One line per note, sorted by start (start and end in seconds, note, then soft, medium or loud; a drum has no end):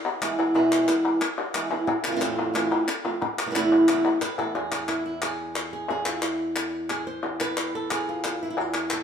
0.05 clap soft
0.21 0.37 E3 soft
0.21 0.38 G#3 medium
0.21 0.38 B3 medium
0.21 0.37 E4 medium
0.21 clap medium
0.38 0.54 E3 soft
0.38 0.54 G#3 soft
0.38 0.54 B3 medium
0.38 0.54 E4 medium
0.38 clap soft
0.54 0.87 E2 medium
0.54 0.87 B2 medium
0.54 0.88 E3 medium
0.54 0.88 G#3 medium
0.54 0.87 B3 medium
0.54 0.86 E4 medium
0.54 clap soft
0.72 clap medium
0.88 1.20 E3 soft
0.88 1.21 G#3 soft
0.88 1.21 B3 medium
0.88 1.20 E4 medium
0.88 clap medium
1.05 clap soft
1.21 muted nylon-string guitar stroke medium
1.21 clap medium
1.38 clap medium
1.54 1.70 E3 medium
1.54 1.70 G#3 medium
1.54 1.70 B3 medium
1.54 1.69 E4 medium
1.54 clap medium
1.70 1.88 E3 medium
1.70 1.87 G#3 soft
1.70 1.87 B3 medium
1.70 1.87 E4 medium
1.70 clap soft
1.87 muted nylon-string guitar stroke medium
1.87 clap medium
2.04 2.10 A2 medium
2.04 2.11 E3 medium
2.04 2.11 A3 medium
2.04 2.11 C4 medium
2.04 clap medium
2.08 2.15 A2 medium
2.08 2.15 E3 medium
2.08 2.15 A3 medium
2.08 2.11 F4 medium
2.12 2.19 A2 medium
2.12 2.23 E3 medium
2.12 2.15 C4 medium
2.12 2.16 F4 medium
2.16 2.52 E2 medium
2.16 2.53 A2 medium
2.16 2.20 A3 medium
2.16 2.20 C4 medium
2.16 2.20 F4 medium
2.21 2.54 A3 medium
2.21 2.54 C4 loud
2.21 2.54 F4 medium
2.21 clap medium
2.39 clap soft
2.54 2.70 E2 medium
2.54 2.70 A2 medium
2.54 2.71 E3 medium
2.54 2.71 A3 medium
2.54 2.71 C4 medium
2.54 2.70 F4 medium
2.54 clap medium
2.71 2.87 E3 soft
2.71 2.87 A3 soft
2.71 2.88 C4 medium
2.71 2.87 F4 medium
2.71 clap soft
2.88 muted nylon-string guitar stroke medium
2.88 clap medium
3.05 3.21 E3 soft
3.05 3.21 A3 medium
3.05 3.21 C4 medium
3.05 3.21 F4 medium
3.05 clap soft
3.22 muted nylon-string guitar stroke medium
3.22 clap soft
3.39 clap medium
3.46 3.49 C3 medium
3.46 3.50 E3 medium
3.46 3.50 A3 medium
3.46 3.51 B3 medium
3.46 3.51 E4 medium
3.51 3.54 C3 medium
3.51 3.54 E3 medium
3.51 3.54 A3 medium
3.51 3.55 B3 medium
3.51 3.55 E4 medium
3.55 3.87 E2 medium
3.55 3.88 C3 medium
3.55 3.88 E3 medium
3.55 3.88 A3 medium
3.55 3.88 B3 medium
3.55 3.88 E4 medium
3.55 clap medium
3.72 clap soft
3.88 4.04 E2 medium
3.88 4.05 C3 medium
3.88 4.05 E3 medium
3.88 4.05 A3 medium
3.88 4.05 B3 medium
3.88 4.04 E4 medium
3.88 clap medium
4.05 4.21 E3 soft
4.05 4.21 A3 soft
4.05 4.21 B3 medium
4.05 4.21 E4 medium
4.05 clap soft
4.21 4.38 B4 medium
4.21 muted nylon-string guitar stroke medium
4.21 clap medium
4.38 4.55 E3 soft
4.38 4.55 A3 medium
4.38 4.55 B3 soft
4.38 4.54 E4 medium
4.38 4.55 A4 medium
4.38 clap soft
4.55 5.89 E2 medium
4.55 4.71 G#4 medium
4.55 clap soft
4.72 4.88 G#4 medium
4.72 clap medium
4.88 5.05 E4 medium
4.88 clap medium
5.06 5.22 E4 medium
5.22 5.72 G#4 medium
5.22 clap medium
5.56 clap medium
5.73 5.89 G#4 medium
5.89 7.22 E2 medium
5.89 6.23 G#4 loud
5.89 clap soft
6.06 6.23 F4 medium
6.06 clap medium
6.22 6.90 E4 medium
6.22 clap medium
6.56 clap medium
6.90 7.06 G#4 medium
6.90 clap medium
7.07 7.40 C5 medium
7.23 8.56 E2 medium
7.23 8.55 C4 soft
7.40 7.74 B4 loud
7.40 clap medium
7.57 clap medium
7.75 7.91 A4 medium
7.91 8.41 G#4 loud
7.91 clap medium
8.09 8.24 F4 medium
8.24 8.43 F4 medium
8.24 clap medium
8.43 8.49 E4 medium
8.43 8.57 F4 medium
8.50 8.58 E4 medium
8.58 9.03 E2 medium
8.58 8.75 F4 loud
8.74 8.91 G#4 medium
8.74 clap medium
8.90 9.03 A4 loud
8.90 clap medium